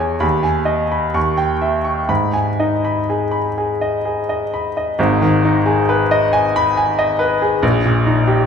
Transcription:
grand piano
Already playing: E2 G#4 C#5
0.00 G#5
0.20 D#2 B5
0.43 G#5
0.65 D#5
0.92 B5
1.14 D#2 C#6
1.37 G5
1.62 E5
1.84 C#6
2.09 G#2 B5
2.34 G#5
2.60 D#4 D#5
2.85 B5
3.10 G#4
3.31 B5
3.58 G#4
3.81 D#5
4.05 G#4
4.29 D#5
4.54 B5
4.77 D#5
4.99 G#1 G#2
5.22 D#3
5.45 D#4
5.66 G#4
5.89 B4
6.11 D#5
6.33 G#5
6.56 B5
6.77 G#5
6.99 D#5
7.19 B4
7.42 G#4
7.63 A#1
7.85 A#2
8.06 D#4
8.27 G4

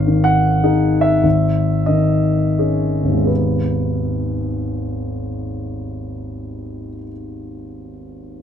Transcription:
grand piano
Already playing: G#1 F5
0.07 D#3
0.24 F#5
0.63 D#4 G#4
1.01 E5
1.23 G#1
1.86 D#3 D#5
2.59 C#4 G#4
3.04 G#1
3.08 D#2
3.13 G#3
3.17 B3
3.21 D#4
3.25 G#4 B4

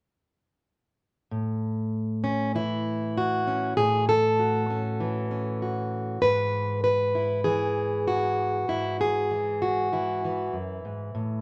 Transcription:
steel-string acoustic guitar
1.31 A2
2.24 C#4
2.55 E3 E4
3.18 F#4
3.48 C#4
3.77 A2 G#4
4.09 A4
4.39 F#4
4.70 C#4
5.00 E3
5.31 C#4
5.62 F#4
6.22 G#2 B4
6.84 B4
7.15 E4
7.44 E3 G#4
8.08 F#4
8.68 G#2 E4
9.01 G#4
9.31 E3
9.62 F#4
9.92 E3 E4
10.25 E3
10.53 F#2
10.85 G#2
11.15 A2

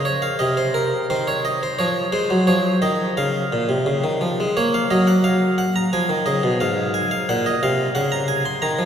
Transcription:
harpsichord
Already playing: C#3
0.05 C#5
0.22 F5
0.39 C3 D#5
0.57 C5
0.74 A#4
1.10 D#3 C5
1.27 C#5
1.45 D#5
1.63 C5
1.79 F3 C#5
2.12 G#3 C5
2.30 F#3
2.47 F3 C#5
2.82 D#3 D#5
3.17 C#3 F5
3.52 A#2
3.69 C3
3.86 C#3
4.04 D#3
4.21 F3
4.40 G#3
4.57 A#3 C#5
4.74 F5
4.91 F#3 D#5
5.07 F#5
5.24 F5
5.58 F#5
5.76 A#5
5.93 F3 G#5
6.09 D#3
6.26 C#3 D#5
6.43 B2
6.60 G#2 F5
6.94 G#5
7.11 F5
7.29 A#2 F#5
7.46 D#5
7.63 C3 F5
7.95 C#3 F#5
8.12 A#5
8.28 G#5
8.45 C6
8.62 D#3 A#5
8.79 F3

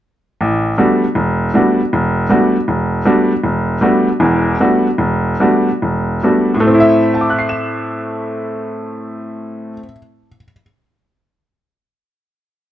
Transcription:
upright piano
0.41 A1
0.78 G3 A3 B3 D4 F#4
1.15 E1
1.54 G3 A3 B3 D4 F#4
1.93 E1
2.29 G3 A3 B3 D4 F#4
2.68 E1
3.05 G3 A3 B3 D4 F#4
3.44 E1
3.81 G3 A3 B3 D4 F#4
4.20 E1 E2
4.60 G3 A3 B3 D4 F#4
4.98 E1
5.40 G3 A3 B3 D4 F#4
5.82 E1
6.23 G3 A3 B3 D4 F#4
6.54 A2
6.60 A3
6.67 C4
6.74 E4
6.80 E5
7.14 A5
7.21 D6
7.30 F#6
7.39 C7
7.49 E7

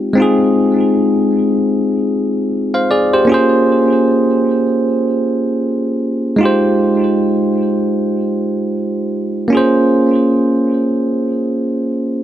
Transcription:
tine electric piano
Already playing: G#3 C4 D#4 F4 G4
0.13 G#3 C4
0.17 D#4 F4
0.22 G#4
2.74 C5 F5
2.91 G#4 D5
3.14 G4 C5
3.25 A#3 C#4
3.29 F4 G#4
3.34 C5
6.36 G#3 D#4
6.41 F4 G4
6.45 C5
9.48 A#3 C#4
9.53 F4 G#4
9.57 C5

